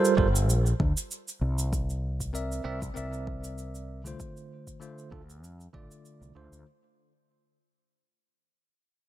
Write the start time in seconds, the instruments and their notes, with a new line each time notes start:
Already playing: tine electric piano G3 F4 A4 A#4 C5
0.05 cabasa
0.17 fretless electric bass G1, tine electric piano G3 F4 A4 A#4 C5, kick
0.36 cabasa
0.49 fretless electric bass A#1, cabasa
0.66 cabasa
0.80 fretless electric bass D2, kick
0.97 cabasa
1.11 cabasa
1.28 cabasa
1.41 fretless electric bass C2
1.59 cabasa
1.73 kick, cabasa
1.90 cabasa
2.20 kick, cabasa
2.33 tine electric piano C4 A#4 D5 E5, cabasa
2.52 cabasa
2.64 fretless electric bass C2, tine electric piano C4 A#4 D5 E5
2.82 kick, cabasa
2.94 fretless electric bass C2, tine electric piano C4 A#4 D5 E5, cabasa
3.13 cabasa
3.27 kick
3.44 cabasa
3.58 cabasa
3.75 cabasa
4.04 tine electric piano D3 A3 F4 C5, cabasa
4.20 kick, cabasa
4.37 cabasa
4.67 kick, cabasa
4.80 tine electric piano D3 A3 F4 C5, cabasa
4.98 cabasa
5.11 fretless electric bass D2, tine electric piano D3 A3 F4 A4, kick
5.30 cabasa
5.43 fretless electric bass F2, cabasa
5.61 cabasa
5.73 fretless electric bass A1, tine electric piano D3 A3 F4 D5, kick
5.91 cabasa
6.05 cabasa
6.21 fretless electric bass C2, cabasa
6.35 fretless electric bass D2, tine electric piano D3 A3 F4 C5
6.52 fretless electric bass D2, cabasa